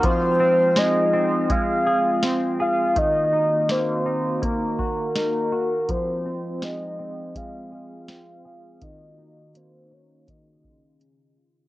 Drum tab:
HH |x-x-x-x-|x-x-x-x-|x-x-x-x-|x-x-x-x-|
SD |--o---o-|--o---o-|--o---o-|--------|
BD |o---o---|o---oo--|o---o---|o---oo--|